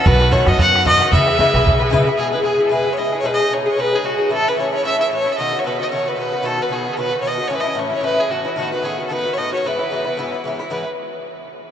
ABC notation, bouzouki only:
X:1
M:4/4
L:1/8
Q:"Swing" 1/4=225
K:E
V:1 name="Bouzouki"
[B,,D,B,F] [D,B,F] [B,,D,B,F] [D,B,F] [B,,D,B,F] [D,B,F] [B,,D,B,F] [D,B,F] | [C,G,EB] [G,EB] [C,G,EB] [G,EB] [C,G,EB] [G,EB] [C,G,EB] [G,EB] | [B,,G,EG] [G,EG] [B,,G,EG] [G,EG] [B,,G,EG] [G,EG] [B,,G,EG] [G,EG] | [B,,G,DG] [G,DG] [B,,G,DG] [G,DG] [B,,G,DG] [G,DG] [B,,G,DG] [G,DG] |
[A,,E,CE] [E,CE] [A,,E,CE] [E,CE] [A,,E,CE] [E,CE] [A,,E,CE] [E,CE] | [B,,D,B,F] [D,B,F] [B,,D,B,F] [D,B,F] [B,,D,B,F] [D,B,F] [B,,D,B,F] [D,B,F] | [B,,D,B,F] [D,B,F] [B,,D,B,F] [D,B,F] [B,,D,B,F] [D,B,F] [B,,D,B,F] [D,B,F] | [A,,E,CE] [E,CE] [A,,E,CE] [E,CE] [A,,E,CE] [E,CE] [A,,E,CE] [E,CE] |
[A,,D,B,F] [D,B,F] [A,,D,B,F] [D,B,F] [A,,D,B,F] [D,B,F] [A,,D,B,F] [D,B,F] | [G,,E,B,E] [E,B,E] [G,,E,B,E] [E,B,E] [G,,E,B,E] [E,B,E] [G,,E,B,E] [E,B,E] | [G,,E,B,E] z6 z |]